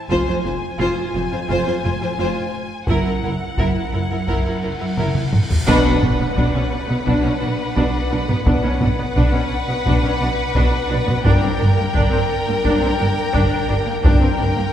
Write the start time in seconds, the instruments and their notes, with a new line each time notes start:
0.09 double bass section F1, cello section F2, viola section F4, violin section C5 G#5, taiko
0.27 cello section F2, viola section F4, violin section C5
0.44 double bass section F1, cello section F2, viola section F4, violin section C5
0.78 double bass section F1, cello section F2, viola section F4, violin section C5
1.13 double bass section F1, cello section F2, viola section F4, violin section C5
1.31 cello section F2, viola section F4, violin section C5
1.48 double bass section F1, cello section F2, viola section F4, violin section C5
1.66 cello section F2, viola section F4, violin section C5
1.84 double bass section F1, cello section F2, viola section F4, violin section C5
2.01 cello section F2, viola section F4, violin section C5
2.18 double bass section F1, cello section F2, viola section F4, violin section C5
2.88 double bass section F#1, cello section F#2, viola section E4, violin section A#4 F#5, taiko, cymbal swell
3.06 cello section F#2, viola section E4, violin section A#4
3.23 double bass section F#1, cello section F#2, viola section E4, violin section A#4
3.57 double bass section F#1, cello section F#2, viola section E4, violin section A#4, taiko
3.93 double bass section F#1, cello section F#2, viola section E4, violin section A#4
4.10 cello section F#2, viola section E4, violin section A#4
4.27 double bass section F#1, cello section F#2, viola section E4, violin section A#4, taiko
4.45 cello section F#2, viola section E4, violin section A#4
4.62 double bass section F#1, cello section F#2, viola section E4, violin section A#4
4.80 cello section F#2, viola section E4, violin section A#4
4.97 double bass section F#1, cello section F#2, viola section E4, violin section A#4, taiko mid
5.15 taiko mid
5.33 taiko low-mid
5.50 taiko low
5.67 double bass section B1, cello section B2, french horn section B3 D4, viola section D4, violin section B4 F#5, taiko, impact
5.84 cello section B2, viola section C#4
6.02 double bass section B1, cello section B2, viola section D4, taiko low-mid
6.19 cello section B2, viola section B3
6.36 double bass section B1, cello section B2, viola section D4, taiko
6.54 cello section B2, viola section C#4
6.88 cello section B2, viola section B3
7.06 double bass section B1, cello section B2, french horn section B3 D4, viola section D4, taiko
7.23 cello section B2, viola section C#4
7.40 double bass section B1, cello section B2, viola section D4
7.76 double bass section B1, cello section B2, viola section D4, taiko
8.11 double bass section B1, cello section B2, viola section D4
8.28 cello section B2, viola section B3, taiko low-mid
8.46 double bass section B1, cello section B2, french horn section B3 D4, viola section D4, violin section B4 F#5, taiko
8.64 cello section B2, viola section C#4
8.81 double bass section B1, cello section B2, viola section D4, taiko low-mid
8.98 cello section B2, viola section B3
9.15 double bass section B1, cello section B2, viola section D4, taiko
9.32 cello section B2, viola section C#4
9.68 cello section B2, viola section B3
9.85 double bass section B1, cello section B2, french horn section B3 D4, viola section D4, taiko
10.02 cello section B2, viola section C#4
10.21 double bass section B1, cello section B2, viola section D4
10.55 double bass section B1, cello section B2, viola section D4, taiko
10.89 double bass section B1, cello section B2, viola section D4
11.06 cello section B2, viola section B3, taiko low-mid
11.25 double bass section G1, cello section G2, french horn section A#3 D4, viola section D4, violin section A#4 G5, taiko
11.42 cello section G2, viola section C4
11.59 double bass section G1, cello section G2, viola section D4
11.77 cello section G2, viola section A#3
11.94 double bass section G1, cello section G2, viola section D4, taiko
12.11 cello section G2, viola section C4
12.46 cello section G2, viola section A#3
12.63 double bass section G1, cello section G2, french horn section A#3 D4, viola section D4, taiko
12.81 cello section G2, viola section C4
12.98 double bass section G1, cello section G2, viola section D4
13.33 double bass section G1, cello section G2, viola section D4, taiko
13.68 double bass section G1, cello section G2, viola section D4
13.86 cello section G2, viola section A#3
14.03 double bass section G1, cello section G2, french horn section A#3 D4, viola section D4, violin section A#4 G5, taiko
14.21 cello section G2, viola section C4
14.39 double bass section G1, cello section G2, viola section D4
14.56 cello section G2, viola section A#3